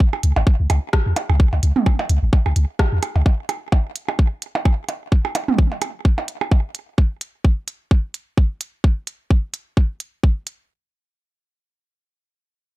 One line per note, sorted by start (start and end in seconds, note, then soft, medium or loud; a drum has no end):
0.00 kick loud
0.13 percussion blips medium
0.23 0.33 C#2 medium
0.23 closed hi-hat loud
0.36 0.44 G#1 medium
0.36 percussion blips medium
0.47 kick loud
0.60 0.67 C#2 loud
0.70 0.79 C#2 medium
0.70 closed hi-hat medium
0.70 percussion blips medium
0.70 percussion blips soft
0.93 kick loud
0.93 cross-stick loud
1.06 1.13 E2 medium
1.16 closed hi-hat loud
1.16 percussion blips medium
1.29 1.45 C#2 loud
1.29 percussion blips medium
1.40 kick loud
1.53 1.60 C#2 loud
1.53 percussion blips soft
1.63 1.72 C#2 medium
1.63 closed hi-hat medium
1.76 mid tom medium
1.86 kick loud
1.86 percussion blips medium
1.99 percussion blips medium
2.09 2.19 C#2 medium
2.09 closed hi-hat medium
2.23 2.30 G#1 medium
2.33 kick loud
2.33 percussion blips soft
2.46 2.53 C#2 loud
2.46 percussion blips medium
2.56 2.65 C#2 medium
2.56 closed hi-hat medium
2.79 kick loud
2.79 cross-stick loud
2.79 percussion blips medium
2.92 3.00 E2 medium
3.03 closed hi-hat medium
3.03 percussion blips medium
3.16 3.23 C#2 loud
3.16 percussion blips soft
3.26 kick loud
3.26 percussion blips soft
3.49 closed hi-hat medium
3.49 percussion blips medium
3.72 kick loud
3.72 percussion blips medium
3.96 closed hi-hat medium
4.08 percussion blips medium
4.08 percussion blips soft
4.19 kick loud
4.42 closed hi-hat medium
4.55 percussion blips medium
4.65 kick loud
4.65 percussion blips medium
4.89 closed hi-hat medium
4.89 percussion blips soft
5.12 kick loud
5.25 percussion blips medium
5.35 closed hi-hat medium
5.35 percussion blips medium
5.48 mid tom medium
5.58 kick loud
5.72 percussion blips soft
5.82 closed hi-hat medium
5.82 percussion blips medium
6.05 kick loud
6.18 percussion blips medium
6.28 closed hi-hat medium
6.41 percussion blips medium
6.51 kick loud
6.51 percussion blips soft
6.75 closed hi-hat medium
6.98 kick loud
7.21 closed hi-hat medium
7.45 kick loud
7.68 closed hi-hat medium
7.91 kick loud
8.14 closed hi-hat medium
8.38 kick loud
8.61 closed hi-hat medium
8.84 kick loud
9.07 closed hi-hat medium
9.30 kick loud
9.54 closed hi-hat medium
9.77 kick loud
10.00 closed hi-hat medium
10.23 kick loud
10.47 closed hi-hat medium